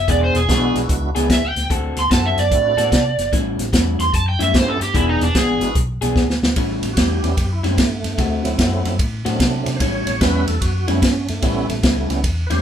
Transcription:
0.08 fingered electric bass E1, clean electric guitar E3 B3 D4 G#4, electric slide guitar D5, kick, closed hi-hat
0.24 electric slide guitar C5
0.34 fingered electric bass E1, electric slide guitar G#4, snare, closed hi-hat
0.48 fingered electric bass B1, clean electric guitar E3 B3 D4 G#4, tonewheel organ G#3 B3 D4 E4 F#4, kick, snare, closed hi-hat
0.75 fingered electric bass B1, snare, closed hi-hat
0.89 fingered electric bass C#2, kick, closed hi-hat
1.15 fingered electric bass C#2, clean electric guitar E3 B3 D4 G#4, tonewheel organ G#3 B3 D4 E4 G#4, snare, closed hi-hat
1.30 fingered electric bass D2, electric slide guitar E5, kick, snare, closed hi-hat
1.45 electric slide guitar G5
1.56 fingered electric bass D2, snare, closed hi-hat
1.70 fingered electric bass D2, clean electric guitar D3 C4 F#4 A4, kick, closed hi-hat
1.96 fingered electric bass D2, electric slide guitar C6, snare, closed hi-hat
2.10 fingered electric bass F#2, clean electric guitar D3 C4 F#4 A4, electric slide guitar A5, kick, snare, closed hi-hat
2.26 electric slide guitar E5
2.37 fingered electric bass F#2, electric slide guitar D5, snare, closed hi-hat
2.51 fingered electric bass A2, tonewheel organ A3 C4 D4 E4 F#4, kick, closed hi-hat
2.77 fingered electric bass A2, clean electric guitar D3 C4 F#4 A4, snare, closed hi-hat
2.92 fingered electric bass C3, kick, snare, closed hi-hat
3.18 fingered electric bass G1, snare, closed hi-hat
3.32 fingered electric bass A1, clean electric guitar A2 G3 C#4 E4, kick, snare, closed hi-hat
3.59 fingered electric bass A1, snare, closed hi-hat
3.73 fingered electric bass E2, clean electric guitar A2 G3 C#4 E4, kick, snare, closed hi-hat
3.98 fingered electric bass E2, electric slide guitar C6, snare, closed hi-hat
4.14 fingered electric bass F#2, electric slide guitar A5, kick, closed hi-hat
4.29 electric slide guitar G5
4.39 fingered electric bass F#2, clean electric guitar A2 G3 C#4 E4, electric slide guitar E5, snare, closed hi-hat
4.53 fingered electric bass G2, tonewheel organ A3 B3 C#4 E4 G4, electric slide guitar C5, kick, snare, closed hi-hat
4.69 electric slide guitar A4
4.80 fingered electric bass G2, electric slide guitar G4, snare, closed hi-hat
4.94 fingered electric bass E1, clean electric guitar E3 B3 D4 G#4, electric slide guitar E4, kick, closed hi-hat
5.09 electric slide guitar D#4
5.20 fingered electric bass E1, electric slide guitar D4, snare, closed hi-hat
5.35 fingered electric bass G#1, clean electric guitar E3 B3 D4 G#4, electric slide guitar G#4, kick, snare, closed hi-hat
5.61 fingered electric bass G#1, tonewheel organ G#3 B3 D4 E4 F#4, snare, closed hi-hat
5.75 fingered electric bass B1, kick, closed hi-hat
6.01 fingered electric bass B1, clean electric guitar E3 B3 D4 G#4, snare, closed hi-hat
6.16 fingered electric bass D2, kick, snare
6.30 snare
6.42 fingered electric bass D2, snare
6.56 fingered electric bass A1, clean electric guitar A2 G3 C#4 E4, kick, ride
6.82 fingered electric bass A1, snare, ride
6.93 fingered electric bass E2, clean electric guitar A2, tonewheel organ F#4, kick, ride
6.97 clean electric guitar G3 C#4 E4, tonewheel organ G4, snare
7.23 fingered electric bass E2, tonewheel organ G3 B3 C#4 E4, snare, ride
7.37 fingered electric bass F#2, kick, snare, ride
7.52 tonewheel organ E4
7.63 fingered electric bass F#2, clean electric guitar A2 G3 C#4 E4, tonewheel organ C4, snare, ride
7.78 fingered electric bass G2, tonewheel organ A3, kick, snare, ride
8.04 fingered electric bass G2, snare, ride
8.18 fingered electric bass D2, clean electric guitar D3 A3 C4 F#4, kick, snare, ride
8.44 fingered electric bass D2, tonewheel organ F#3 A3 C4 E4, snare, ride
8.59 fingered electric bass F#2, clean electric guitar D3 A3 C4 F#4, kick, snare, ride
8.84 fingered electric bass F#2, tonewheel organ F#3 A3 C4 E4, snare, ride
8.99 fingered electric bass A2, kick, ride
9.25 fingered electric bass A2, clean electric guitar D3 A3 C4 F#4, tonewheel organ F#3 A3 C4 D4, snare, ride
9.40 fingered electric bass C3, kick, snare, ride
9.66 fingered electric bass C3, snare, ride
9.76 fingered electric bass A1, clean electric guitar A2, tonewheel organ C5, kick, ride
9.80 clean electric guitar G3 C#4 E4, tonewheel organ C#5, snare
10.06 fingered electric bass A1, snare, ride
10.20 fingered electric bass E2, clean electric guitar A2 G3 C#4 E4, tonewheel organ G3 B3 C#4 E4 B4, kick, snare, ride
10.47 fingered electric bass E2, tonewheel organ A4, snare, ride
10.61 fingered electric bass F#2, tonewheel organ F#4, kick, snare, ride
10.87 fingered electric bass F#2, clean electric guitar A2 G3 C#4 E4, tonewheel organ G3 B3 C#4 E4, snare, ride
11.02 fingered electric bass G2, tonewheel organ C#4, kick, snare, ride
11.28 fingered electric bass G2, tonewheel organ A3, snare, ride
11.42 fingered electric bass A1, clean electric guitar A2 G3 C#4 E4, tonewheel organ G3 B3 C#4 E4, kick, snare, ride
11.69 fingered electric bass A1, snare, ride
11.83 fingered electric bass C#2, clean electric guitar A2 G3 C#4 E4, kick, snare, ride
12.09 fingered electric bass C#2, tonewheel organ G3 B3 C#4 E4, snare, ride
12.24 fingered electric bass E2, kick, ride
12.47 fingered electric bass E2, clean electric guitar C#4 E4, tonewheel organ B4, ride
12.51 clean electric guitar A2 G3, tonewheel organ G4 C5, snare

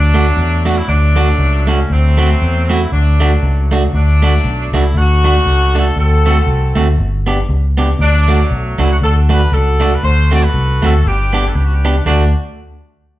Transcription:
Already playing: fingered electric bass D2, horn section F#3 A3 D4
0.14 clean electric guitar A3 D4 F#4
0.37 fingered electric bass E2
0.65 clean electric guitar A3 D4 F#4, horn section F#4
0.77 horn section E4
0.88 fingered electric bass D2, horn section F#3 A3 D4
1.16 clean electric guitar A3 D4 F#4
1.38 fingered electric bass C#2
1.67 clean electric guitar A3 D4 F#4, horn section C#4
1.90 fingered electric bass D2, horn section F#3 A3 C4
2.18 clean electric guitar A3 C4 F#4
2.42 fingered electric bass E2
2.69 clean electric guitar A3 C4 F#4, horn section E4
2.92 fingered electric bass D2, horn section F#3 A3 D4
3.20 clean electric guitar A3 D4 F#4
3.43 fingered electric bass C#2
3.71 clean electric guitar A3 D4 F#4
3.93 fingered electric bass D2, horn section F#3 A3 D4
4.22 clean electric guitar A3 D4 F#4
4.44 fingered electric bass B1
4.73 fingered electric bass C#2, clean electric guitar A3 D4 F#4, horn section E4
4.94 fingered electric bass D2, horn section A3 D4 F#4
5.24 clean electric guitar A3 D4 F#4
5.46 fingered electric bass C#2
5.75 clean electric guitar A3 D4 F#4, horn section A4
5.96 fingered electric bass D2, horn section C4 F#4 A4
6.26 clean electric guitar A3 C4 F#4
6.47 fingered electric bass C2
6.75 fingered electric bass D2, clean electric guitar A3 C4 F#4
6.98 fingered electric bass G1
7.27 clean electric guitar B3 D4 G4
7.49 fingered electric bass C#2
7.78 clean electric guitar B3 D4 G4
7.99 fingered electric bass D2, horn section F#3 A3 D4
8.28 clean electric guitar A3 D4 F#4
8.51 fingered electric bass B1
8.78 fingered electric bass C#2, clean electric guitar A3 D4 F#4, horn section E4
8.92 horn section F#4
9.01 fingered electric bass D2, horn section D4 F#4 A4
9.29 clean electric guitar A3 D4 F#4, horn section B4
9.52 fingered electric bass C#2, horn section D4 F#4 A4
9.80 clean electric guitar A3 D4 F#4
9.94 horn section B4
10.03 fingered electric bass D2, horn section F#4 A4 C5
10.31 clean electric guitar A3 C4 F#4, horn section D5
10.44 horn section F#4 B4
10.54 fingered electric bass C2
10.82 fingered electric bass D2, clean electric guitar A3 C4 F#4, horn section A4
11.04 fingered electric bass G1, horn section B3 D4 G4
11.33 clean electric guitar B3 D4 G4
11.47 horn section A4
11.55 fingered electric bass C#2, horn section G4
11.63 horn section F#4
11.74 horn section G4
11.85 clean electric guitar B3 D4 G4
12.06 fingered electric bass D2, clean electric guitar A3 D4 F#4, horn section D4

